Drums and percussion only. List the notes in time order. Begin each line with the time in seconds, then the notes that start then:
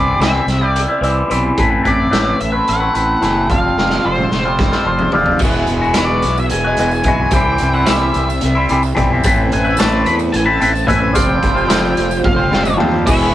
0.21 snare, closed hi-hat
0.48 snare, closed hi-hat
0.76 closed hi-hat
1.03 closed hi-hat
1.31 closed hi-hat
1.58 kick, closed hi-hat
1.85 kick, closed hi-hat
2.13 snare, closed hi-hat
2.40 closed hi-hat
2.68 closed hi-hat
2.95 closed hi-hat
3.22 snare, closed hi-hat
3.50 kick, closed hi-hat
3.78 snare
3.90 snare
4.18 mid tom
4.31 snare
4.59 kick, snare
4.72 snare
4.99 floor tom
5.12 floor tom
5.26 floor tom
5.39 kick, crash, tambourine
5.55 tambourine
5.67 closed hi-hat
5.84 tambourine
5.94 snare, closed hi-hat, tambourine
6.22 closed hi-hat, tambourine
6.38 tambourine
6.50 closed hi-hat
6.77 closed hi-hat, tambourine
6.91 tambourine
7.04 kick, closed hi-hat
7.31 kick, closed hi-hat, tambourine
7.58 closed hi-hat
7.74 tambourine
7.86 snare, closed hi-hat, tambourine
8.14 closed hi-hat
8.30 tambourine
8.41 closed hi-hat
8.69 closed hi-hat, tambourine
8.83 tambourine
8.97 kick, closed hi-hat
9.24 kick, closed hi-hat, tambourine
9.52 closed hi-hat
9.65 tambourine
9.77 snare, closed hi-hat, tambourine
10.06 closed hi-hat, tambourine
10.19 tambourine
10.34 closed hi-hat
10.61 closed hi-hat, tambourine
10.75 tambourine
10.88 kick, closed hi-hat
11.15 kick, closed hi-hat, tambourine
11.43 kick, closed hi-hat
11.57 tambourine
11.70 snare, closed hi-hat, tambourine
11.85 tambourine
11.97 closed hi-hat
12.11 tambourine
12.24 kick, high tom
12.53 snare
12.65 mid tom, tambourine
12.80 floor tom
13.07 kick, crash, tambourine
13.21 tambourine